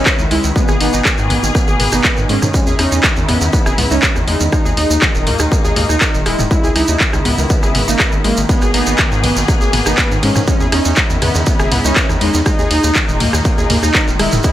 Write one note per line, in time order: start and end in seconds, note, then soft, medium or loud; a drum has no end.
0.00 0.54 C#3 medium
0.00 0.52 G#3 medium
0.00 0.18 C#4 loud
0.00 0.54 E4 medium
0.06 0.15 B4 medium
0.06 kick loud
0.06 cross-stick medium
0.06 clap loud
0.06 shekere medium
0.19 0.27 C#2 medium
0.19 0.30 D#3 loud
0.19 shekere soft
0.31 0.39 C#2 loud
0.31 0.39 G#3 loud
0.31 0.47 E4 medium
0.31 open hi-hat medium
0.44 0.51 C#2 medium
0.44 0.55 D#3 medium
0.44 shekere medium
0.56 2.52 B2 medium
0.56 0.64 G#3 medium
0.56 2.52 A#3 medium
0.56 0.72 B3 loud
0.56 2.52 G#4 medium
0.56 kick loud
0.56 shekere medium
0.68 0.76 G#1 medium
0.68 0.77 G#4 loud
0.68 cross-stick soft
0.68 shekere soft
0.80 0.89 G#1 loud
0.80 1.05 B3 loud
0.80 0.92 D#4 medium
0.80 open hi-hat loud
0.93 1.01 G#1 medium
0.93 1.05 D#4 medium
0.93 shekere medium
1.05 1.14 D#3 medium
1.05 kick loud
1.05 cross-stick medium
1.05 clap loud
1.05 shekere medium
1.18 1.32 G#2 medium
1.18 1.30 D#3 loud
1.18 shekere soft
1.30 1.38 G#1 loud
1.30 1.42 B3 loud
1.30 mid tom medium
1.30 open hi-hat loud
1.43 1.51 G#1 medium
1.43 1.54 D#3 medium
1.43 shekere medium
1.55 1.67 B3 medium
1.55 kick loud
1.55 cross-stick soft
1.55 shekere medium
1.68 1.75 G#1 medium
1.68 1.76 G#4 loud
1.68 shekere soft
1.80 1.88 G#1 loud
1.80 1.85 B3 medium
1.80 mid tom medium
1.80 open hi-hat loud
1.92 2.00 G#1 medium
1.92 2.17 B3 loud
1.92 2.04 D#4 medium
1.92 cross-stick medium
1.92 shekere medium
2.04 2.13 B4 medium
2.04 kick loud
2.04 clap loud
2.04 shekere medium
2.17 2.25 G#2 medium
2.17 2.29 D#3 loud
2.17 shekere soft
2.29 2.37 G#2 loud
2.29 2.38 G#3 loud
2.29 2.46 C#4 medium
2.29 open hi-hat medium
2.42 2.50 G#2 medium
2.42 2.54 D#3 medium
2.42 cross-stick medium
2.42 mid tom loud
2.42 shekere medium
2.54 4.50 C#3 medium
2.54 2.62 G#3 medium
2.54 8.45 G#3 medium
2.54 2.71 C#4 loud
2.54 4.50 E4 medium
2.54 kick loud
2.54 shekere medium
2.67 2.75 E2 medium
2.67 2.75 G#4 loud
2.67 shekere soft
2.79 2.87 E2 loud
2.79 3.03 C#4 loud
2.79 2.90 D#4 medium
2.79 cross-stick medium
2.79 open hi-hat loud
2.92 2.99 E2 medium
2.92 3.03 D#4 medium
2.92 shekere medium
3.04 3.12 D#3 medium
3.04 kick loud
3.04 clap loud
3.04 shekere medium
3.16 3.24 E2 medium
3.16 3.28 D#3 loud
3.16 shekere soft
3.28 3.37 E2 loud
3.28 3.41 B3 loud
3.28 cross-stick medium
3.28 mid tom medium
3.28 open hi-hat loud
3.41 3.49 E2 medium
3.41 3.53 D#3 medium
3.41 shekere medium
3.53 3.65 B3 medium
3.53 kick loud
3.53 shekere medium
3.66 3.74 E1 medium
3.66 3.74 G#4 loud
3.66 cross-stick medium
3.66 shekere soft
3.78 3.86 C#2 loud
3.78 3.83 B3 medium
3.78 mid tom medium
3.78 open hi-hat loud
3.91 3.98 C#2 medium
3.91 4.15 C#4 loud
3.91 4.02 D#4 medium
3.91 shekere medium
4.03 4.11 B4 medium
4.03 kick loud
4.03 clap loud
4.03 shekere medium
4.16 4.23 E2 medium
4.16 4.27 D#3 loud
4.16 cross-stick medium
4.16 shekere soft
4.28 4.36 E2 loud
4.28 4.36 G#3 loud
4.28 4.44 D#4 medium
4.28 open hi-hat loud
4.40 4.48 E2 medium
4.40 4.52 D#3 medium
4.40 shekere medium
4.52 6.49 A#2 medium
4.52 4.61 G#3 medium
4.52 6.49 D#4 medium
4.52 4.69 D#4 loud
4.52 kick loud
4.52 cross-stick medium
4.52 shekere medium
4.65 4.73 D#2 medium
4.65 4.73 G#4 loud
4.65 shekere soft
4.77 4.85 D#2 loud
4.77 4.89 D#4 medium
4.77 5.02 D#4 medium
4.77 open hi-hat loud
4.90 4.98 D#2 medium
4.90 5.02 D#4 medium
4.90 shekere medium
5.02 5.10 D#3 medium
5.02 kick loud
5.02 cross-stick medium
5.02 clap loud
5.02 shekere medium
5.15 5.28 D#1 medium
5.15 5.26 D#3 loud
5.15 shekere soft
5.27 5.35 D#2 loud
5.27 5.39 A#3 loud
5.27 mid tom medium
5.27 open hi-hat loud
5.39 5.47 D#2 medium
5.39 5.51 D#3 medium
5.39 cross-stick medium
5.39 shekere medium
5.52 5.64 A#3 medium
5.52 kick loud
5.52 shekere medium
5.64 5.72 D#2 medium
5.64 5.72 G#4 loud
5.64 shekere soft
5.76 5.84 D#2 loud
5.76 5.82 A#3 medium
5.76 mid tom medium
5.76 open hi-hat loud
5.89 5.97 D#2 medium
5.89 6.01 D#4 medium
5.89 6.14 D#4 loud
5.89 cross-stick medium
5.89 shekere medium
6.01 6.10 A#4 medium
6.01 kick loud
6.01 clap loud
6.01 shekere medium
6.14 6.22 D#1 medium
6.14 6.25 D#3 loud
6.14 shekere soft
6.26 6.34 D#1 loud
6.26 6.34 G#3 loud
6.26 6.43 E4 medium
6.26 cross-stick medium
6.26 open hi-hat loud
6.39 6.46 D#1 medium
6.39 6.50 D#3 medium
6.39 mid tom medium
6.39 shekere medium
6.51 8.47 C#3 medium
6.51 6.59 G#3 medium
6.51 8.47 E4 medium
6.51 6.67 E4 loud
6.51 kick loud
6.51 shekere medium
6.64 6.71 C#2 medium
6.64 6.72 G#4 loud
6.64 shekere soft
6.76 6.84 C#2 loud
6.76 6.87 D#4 medium
6.76 7.00 E4 medium
6.76 cross-stick medium
6.76 open hi-hat loud
6.88 6.96 D#2 medium
6.88 7.00 D#4 medium
6.88 shekere medium
7.00 7.09 D#3 medium
7.00 kick loud
7.00 clap loud
7.00 shekere medium
7.13 7.21 C#2 medium
7.13 7.25 D#3 loud
7.13 cross-stick medium
7.13 shekere soft
7.25 7.33 C#2 loud
7.25 7.37 B3 loud
7.25 mid tom medium
7.25 open hi-hat loud
7.38 7.46 C#2 medium
7.38 7.49 D#3 medium
7.38 shekere medium
7.50 7.62 B3 medium
7.50 kick loud
7.50 shekere medium
7.63 7.70 G#1 medium
7.63 7.71 G#4 loud
7.63 cross-stick medium
7.63 shekere soft
7.75 7.83 G#1 loud
7.75 7.80 B3 medium
7.75 mid tom medium
7.75 open hi-hat loud
7.88 7.95 G#1 medium
7.88 8.12 A#3 loud
7.88 7.99 D#4 medium
7.88 shekere medium
8.00 8.08 B4 medium
8.00 kick loud
8.00 cross-stick medium
8.00 clap loud
8.00 shekere medium
8.12 8.20 G#1 medium
8.12 8.24 D#3 loud
8.12 shekere soft
8.24 8.33 G#1 loud
8.24 8.33 G#3 loud
8.24 8.41 A#3 medium
8.24 open hi-hat loud
8.37 8.45 G#1 medium
8.37 8.49 D#3 medium
8.37 shekere medium
8.49 10.46 B2 medium
8.49 8.57 G#3 medium
8.49 10.46 A#3 medium
8.49 8.66 B3 loud
8.49 10.46 G#4 medium
8.49 kick loud
8.49 ride medium
8.49 shekere medium
8.62 8.70 G#1 medium
8.62 8.70 G#4 loud
8.62 cross-stick medium
8.62 shekere soft
8.74 8.82 G#1 loud
8.74 8.98 B3 loud
8.74 8.86 D#4 medium
8.74 open hi-hat loud
8.74 ride medium
8.87 8.94 G#1 medium
8.87 8.98 D#4 medium
8.87 shekere medium
8.98 9.07 D#3 medium
8.98 kick loud
8.98 cross-stick medium
8.98 clap loud
8.98 ride medium
8.98 shekere medium
9.12 9.25 G#2 medium
9.12 9.23 D#3 loud
9.12 shekere soft
9.24 9.32 G#1 loud
9.24 9.36 B3 loud
9.24 mid tom medium
9.24 open hi-hat medium
9.24 ride medium
9.36 9.44 G#1 medium
9.36 9.48 D#3 medium
9.36 shekere medium
9.48 9.61 B3 medium
9.48 kick loud
9.48 cross-stick medium
9.48 ride soft
9.48 shekere medium
9.61 9.69 G#1 medium
9.61 9.69 G#4 loud
9.61 shekere soft
9.73 9.81 G#1 loud
9.73 9.78 B3 medium
9.73 mid tom medium
9.73 open hi-hat loud
9.73 ride medium
9.86 9.94 G#1 medium
9.86 10.10 B3 loud
9.86 9.97 D#4 medium
9.86 cross-stick medium
9.86 shekere medium
9.98 10.06 B4 medium
9.98 kick loud
9.98 clap loud
9.98 ride medium
9.98 shekere medium
10.11 10.18 G#2 medium
10.11 10.22 D#3 loud
10.11 shekere soft
10.23 10.31 G#2 loud
10.23 10.31 G#3 loud
10.23 10.39 C#4 medium
10.23 open hi-hat medium
10.23 ride medium
10.35 10.43 G#2 medium
10.35 10.47 D#3 medium
10.35 cross-stick medium
10.35 mid tom loud
10.35 shekere medium
10.47 12.44 C#3 medium
10.47 14.52 G#3 medium
10.47 10.56 G#3 medium
10.47 10.64 C#4 loud
10.47 12.44 E4 medium
10.47 kick loud
10.47 ride medium
10.47 shekere medium
10.60 10.68 E2 medium
10.60 10.68 G#4 loud
10.60 shekere soft
10.72 10.80 E2 loud
10.72 10.97 C#4 loud
10.72 10.84 D#4 medium
10.72 cross-stick medium
10.72 open hi-hat loud
10.72 ride medium
10.85 10.93 E2 medium
10.85 10.97 D#4 medium
10.85 shekere medium
10.96 11.05 D#3 medium
10.96 kick loud
10.96 clap loud
10.96 ride medium
10.96 shekere medium
11.10 11.18 E2 medium
11.10 11.21 D#3 loud
11.10 shekere soft
11.22 11.30 E2 loud
11.22 11.34 B3 loud
11.22 cross-stick medium
11.22 mid tom medium
11.22 open hi-hat medium
11.22 ride medium
11.35 11.42 E2 medium
11.35 11.46 D#3 medium
11.35 shekere medium
11.46 11.59 B3 medium
11.46 kick loud
11.46 ride medium
11.46 shekere medium
11.59 11.67 E1 medium
11.59 11.68 G#4 loud
11.59 cross-stick medium
11.59 shekere soft
11.72 11.80 C#2 loud
11.72 11.77 B3 medium
11.72 mid tom medium
11.72 open hi-hat loud
11.72 ride medium
11.84 11.92 C#2 medium
11.84 12.09 C#4 loud
11.84 11.96 D#4 medium
11.84 shekere medium
11.96 12.05 B4 medium
11.96 kick loud
11.96 clap loud
11.96 ride medium
11.96 shekere medium
12.09 12.17 E2 medium
12.09 12.21 D#3 loud
12.09 cross-stick medium
12.09 shekere soft
12.21 12.29 E2 loud
12.21 12.29 G#3 loud
12.21 12.38 D#4 medium
12.21 open hi-hat medium
12.21 ride medium
12.34 12.42 E2 medium
12.34 12.45 D#3 medium
12.34 shekere medium
12.46 14.42 A#2 medium
12.46 12.54 G#3 medium
12.46 14.42 D#4 medium
12.46 12.62 D#4 loud
12.46 kick loud
12.46 cross-stick medium
12.46 ride medium
12.46 shekere medium
12.59 12.66 D#2 medium
12.59 12.67 G#4 loud
12.59 shekere soft
12.71 12.79 D#2 loud
12.71 12.82 D#4 medium
12.71 12.95 D#4 medium
12.71 open hi-hat loud
12.71 ride medium
12.84 12.91 D#2 medium
12.84 12.95 D#4 medium
12.84 shekere medium
12.95 13.04 D#3 medium
12.95 kick loud
12.95 cross-stick medium
12.95 clap loud
12.95 ride medium
12.95 shekere medium
13.08 13.22 D#1 medium
13.08 13.20 D#3 loud
13.08 shekere soft
13.20 13.28 D#2 loud
13.20 13.32 A#3 loud
13.20 mid tom medium
13.20 open hi-hat medium
13.20 ride medium
13.33 13.41 D#2 medium
13.33 13.45 D#3 medium
13.33 cross-stick medium
13.33 shekere medium
13.45 13.57 A#3 medium
13.45 kick loud
13.45 ride medium
13.45 shekere medium
13.58 13.65 D#2 medium
13.58 13.66 G#4 loud
13.58 shekere soft
13.70 13.78 D#2 loud
13.70 13.75 A#3 medium
13.70 mid tom medium
13.70 open hi-hat loud
13.70 ride medium
13.83 13.90 D#2 medium
13.83 13.94 D#4 medium
13.83 14.07 D#4 loud
13.83 cross-stick medium
13.83 shekere medium
13.95 14.03 A#4 medium
13.95 kick loud
13.95 clap loud
13.95 ride medium
13.95 shekere medium
14.07 14.15 D#1 medium
14.07 14.19 D#3 loud
14.07 shekere soft
14.19 14.28 D#1 loud
14.19 14.28 G#3 loud
14.19 14.36 E4 medium
14.19 cross-stick medium
14.19 open hi-hat medium
14.19 ride medium
14.32 14.40 D#1 medium
14.32 14.44 D#3 medium
14.32 mid tom loud
14.32 shekere medium
14.43 14.52 C#3 medium
14.43 14.52 G#3 medium
14.43 14.52 E4 medium
14.43 14.52 E4 loud
14.43 kick loud
14.43 ride medium
14.43 shekere medium